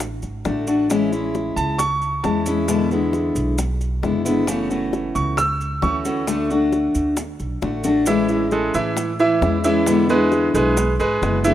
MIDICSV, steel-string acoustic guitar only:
0, 0, Header, 1, 3, 480
1, 0, Start_track
1, 0, Key_signature, 3, "major"
1, 0, Tempo, 448766
1, 957, Time_signature, 4, 2, 24, 8
1, 12345, End_track
2, 0, Start_track
2, 0, Title_t, "Steel-string acoustic guitar"
2, 0, Program_c, 0, 25
2, 479, Note_on_c, 0, 50, 46
2, 485, Note_on_c, 0, 57, 53
2, 492, Note_on_c, 0, 62, 56
2, 496, Note_on_c, 0, 66, 49
2, 706, Note_off_c, 0, 66, 0
2, 709, Note_off_c, 0, 50, 0
2, 712, Note_off_c, 0, 57, 0
2, 715, Note_off_c, 0, 62, 0
2, 719, Note_on_c, 0, 66, 63
2, 728, Note_on_c, 0, 62, 57
2, 737, Note_on_c, 0, 57, 49
2, 949, Note_off_c, 0, 66, 0
2, 953, Note_off_c, 0, 62, 0
2, 958, Note_off_c, 0, 57, 0
2, 958, Note_on_c, 0, 52, 73
2, 964, Note_on_c, 0, 56, 73
2, 971, Note_on_c, 0, 61, 73
2, 976, Note_on_c, 0, 64, 78
2, 1186, Note_off_c, 0, 64, 0
2, 1188, Note_off_c, 0, 52, 0
2, 1191, Note_off_c, 0, 56, 0
2, 1195, Note_off_c, 0, 61, 0
2, 1199, Note_on_c, 0, 64, 65
2, 1206, Note_on_c, 0, 61, 60
2, 1217, Note_on_c, 0, 56, 54
2, 1904, Note_off_c, 0, 61, 0
2, 1912, Note_off_c, 0, 56, 0
2, 1916, Note_off_c, 0, 64, 0
2, 2394, Note_on_c, 0, 52, 51
2, 2398, Note_on_c, 0, 56, 57
2, 2405, Note_on_c, 0, 61, 48
2, 2409, Note_on_c, 0, 64, 52
2, 2617, Note_off_c, 0, 64, 0
2, 2625, Note_off_c, 0, 52, 0
2, 2628, Note_off_c, 0, 56, 0
2, 2628, Note_off_c, 0, 61, 0
2, 2630, Note_on_c, 0, 64, 63
2, 2641, Note_on_c, 0, 61, 66
2, 2647, Note_on_c, 0, 56, 58
2, 2860, Note_off_c, 0, 56, 0
2, 2863, Note_off_c, 0, 64, 0
2, 2864, Note_on_c, 0, 47, 66
2, 2869, Note_off_c, 0, 61, 0
2, 2871, Note_on_c, 0, 50, 76
2, 2873, Note_on_c, 0, 56, 73
2, 2879, Note_on_c, 0, 59, 75
2, 2884, Note_on_c, 0, 64, 83
2, 3096, Note_off_c, 0, 64, 0
2, 3101, Note_off_c, 0, 47, 0
2, 3104, Note_off_c, 0, 50, 0
2, 3105, Note_off_c, 0, 56, 0
2, 3108, Note_off_c, 0, 59, 0
2, 3109, Note_on_c, 0, 64, 60
2, 3119, Note_on_c, 0, 59, 57
2, 3120, Note_on_c, 0, 56, 56
2, 3131, Note_on_c, 0, 50, 52
2, 3823, Note_off_c, 0, 50, 0
2, 3823, Note_off_c, 0, 59, 0
2, 3824, Note_off_c, 0, 56, 0
2, 3837, Note_off_c, 0, 64, 0
2, 4306, Note_on_c, 0, 50, 47
2, 4315, Note_on_c, 0, 56, 53
2, 4319, Note_on_c, 0, 59, 51
2, 4326, Note_on_c, 0, 64, 57
2, 4531, Note_off_c, 0, 64, 0
2, 4538, Note_off_c, 0, 59, 0
2, 4540, Note_off_c, 0, 56, 0
2, 4541, Note_off_c, 0, 50, 0
2, 4544, Note_on_c, 0, 64, 71
2, 4551, Note_on_c, 0, 59, 65
2, 4553, Note_on_c, 0, 56, 57
2, 4559, Note_on_c, 0, 50, 58
2, 4780, Note_off_c, 0, 64, 0
2, 4782, Note_off_c, 0, 50, 0
2, 4783, Note_off_c, 0, 59, 0
2, 4784, Note_off_c, 0, 56, 0
2, 4784, Note_on_c, 0, 49, 77
2, 4786, Note_on_c, 0, 52, 72
2, 4795, Note_on_c, 0, 57, 77
2, 4797, Note_on_c, 0, 61, 79
2, 4798, Note_on_c, 0, 66, 79
2, 5013, Note_off_c, 0, 66, 0
2, 5020, Note_off_c, 0, 49, 0
2, 5021, Note_off_c, 0, 52, 0
2, 5023, Note_off_c, 0, 61, 0
2, 5026, Note_off_c, 0, 57, 0
2, 5026, Note_on_c, 0, 66, 60
2, 5036, Note_on_c, 0, 61, 57
2, 5041, Note_on_c, 0, 57, 57
2, 5043, Note_on_c, 0, 52, 51
2, 5742, Note_off_c, 0, 52, 0
2, 5746, Note_off_c, 0, 61, 0
2, 5753, Note_off_c, 0, 57, 0
2, 5761, Note_off_c, 0, 66, 0
2, 6231, Note_on_c, 0, 52, 52
2, 6238, Note_on_c, 0, 57, 52
2, 6243, Note_on_c, 0, 61, 58
2, 6251, Note_on_c, 0, 66, 57
2, 6459, Note_off_c, 0, 66, 0
2, 6463, Note_off_c, 0, 52, 0
2, 6466, Note_off_c, 0, 61, 0
2, 6467, Note_off_c, 0, 57, 0
2, 6472, Note_on_c, 0, 66, 67
2, 6479, Note_on_c, 0, 61, 63
2, 6484, Note_on_c, 0, 57, 61
2, 6488, Note_on_c, 0, 52, 57
2, 6702, Note_off_c, 0, 52, 0
2, 6702, Note_off_c, 0, 57, 0
2, 6704, Note_off_c, 0, 66, 0
2, 6707, Note_off_c, 0, 61, 0
2, 6707, Note_on_c, 0, 50, 78
2, 6715, Note_on_c, 0, 57, 83
2, 6720, Note_on_c, 0, 62, 77
2, 6725, Note_on_c, 0, 66, 77
2, 6941, Note_off_c, 0, 50, 0
2, 6944, Note_off_c, 0, 66, 0
2, 6945, Note_off_c, 0, 57, 0
2, 6948, Note_off_c, 0, 62, 0
2, 6957, Note_on_c, 0, 66, 64
2, 6965, Note_on_c, 0, 62, 65
2, 6973, Note_on_c, 0, 57, 55
2, 7664, Note_off_c, 0, 57, 0
2, 7666, Note_off_c, 0, 66, 0
2, 7667, Note_off_c, 0, 62, 0
2, 8150, Note_on_c, 0, 50, 47
2, 8158, Note_on_c, 0, 57, 52
2, 8161, Note_on_c, 0, 62, 50
2, 8168, Note_on_c, 0, 66, 57
2, 8379, Note_off_c, 0, 66, 0
2, 8383, Note_off_c, 0, 50, 0
2, 8387, Note_off_c, 0, 57, 0
2, 8388, Note_off_c, 0, 62, 0
2, 8391, Note_on_c, 0, 66, 70
2, 8402, Note_on_c, 0, 62, 62
2, 8413, Note_on_c, 0, 57, 53
2, 8624, Note_off_c, 0, 66, 0
2, 8629, Note_off_c, 0, 62, 0
2, 8631, Note_on_c, 0, 52, 67
2, 8633, Note_off_c, 0, 57, 0
2, 8637, Note_on_c, 0, 56, 79
2, 8640, Note_on_c, 0, 61, 70
2, 8648, Note_on_c, 0, 64, 76
2, 8854, Note_off_c, 0, 64, 0
2, 8863, Note_off_c, 0, 52, 0
2, 8865, Note_off_c, 0, 61, 0
2, 8867, Note_off_c, 0, 56, 0
2, 8867, Note_on_c, 0, 64, 61
2, 8878, Note_on_c, 0, 61, 58
2, 8884, Note_on_c, 0, 56, 53
2, 9587, Note_off_c, 0, 61, 0
2, 9590, Note_off_c, 0, 56, 0
2, 9595, Note_off_c, 0, 64, 0
2, 10073, Note_on_c, 0, 52, 48
2, 10084, Note_on_c, 0, 56, 51
2, 10087, Note_on_c, 0, 61, 48
2, 10092, Note_on_c, 0, 64, 55
2, 10301, Note_off_c, 0, 64, 0
2, 10305, Note_off_c, 0, 52, 0
2, 10307, Note_off_c, 0, 61, 0
2, 10310, Note_off_c, 0, 56, 0
2, 10314, Note_on_c, 0, 64, 66
2, 10319, Note_on_c, 0, 61, 67
2, 10327, Note_on_c, 0, 56, 56
2, 10545, Note_off_c, 0, 64, 0
2, 10548, Note_off_c, 0, 61, 0
2, 10552, Note_off_c, 0, 56, 0
2, 10555, Note_on_c, 0, 47, 69
2, 10563, Note_on_c, 0, 50, 76
2, 10564, Note_on_c, 0, 56, 78
2, 10569, Note_on_c, 0, 59, 76
2, 10573, Note_on_c, 0, 64, 80
2, 10779, Note_off_c, 0, 64, 0
2, 10786, Note_off_c, 0, 47, 0
2, 10788, Note_off_c, 0, 59, 0
2, 10790, Note_off_c, 0, 50, 0
2, 10790, Note_off_c, 0, 56, 0
2, 10792, Note_on_c, 0, 64, 64
2, 10800, Note_on_c, 0, 59, 57
2, 10807, Note_on_c, 0, 56, 63
2, 10811, Note_on_c, 0, 50, 58
2, 11509, Note_off_c, 0, 50, 0
2, 11509, Note_off_c, 0, 59, 0
2, 11512, Note_off_c, 0, 56, 0
2, 11529, Note_off_c, 0, 64, 0
2, 12005, Note_on_c, 0, 50, 47
2, 12013, Note_on_c, 0, 56, 57
2, 12017, Note_on_c, 0, 59, 56
2, 12021, Note_on_c, 0, 64, 53
2, 12231, Note_off_c, 0, 50, 0
2, 12235, Note_off_c, 0, 56, 0
2, 12238, Note_off_c, 0, 59, 0
2, 12240, Note_off_c, 0, 64, 0
2, 12250, Note_on_c, 0, 64, 65
2, 12254, Note_on_c, 0, 59, 64
2, 12264, Note_on_c, 0, 56, 63
2, 12267, Note_on_c, 0, 50, 52
2, 12345, Note_off_c, 0, 50, 0
2, 12345, Note_off_c, 0, 56, 0
2, 12345, Note_off_c, 0, 59, 0
2, 12345, Note_off_c, 0, 64, 0
2, 12345, End_track
3, 0, Start_track
3, 0, Title_t, "Muted steel-string acoustic guitar strokes"
3, 9, Note_on_c, 9, 29, 62
3, 116, Note_off_c, 9, 29, 0
3, 1913, Note_on_c, 9, 29, 62
3, 2020, Note_off_c, 9, 29, 0
3, 3832, Note_on_c, 9, 29, 61
3, 3939, Note_off_c, 9, 29, 0
3, 5754, Note_on_c, 9, 29, 63
3, 5861, Note_off_c, 9, 29, 0
3, 7676, Note_on_c, 9, 29, 60
3, 7783, Note_off_c, 9, 29, 0
3, 9594, Note_on_c, 9, 29, 59
3, 9701, Note_off_c, 9, 29, 0
3, 11522, Note_on_c, 9, 29, 64
3, 11629, Note_off_c, 9, 29, 0
3, 12345, End_track
0, 0, End_of_file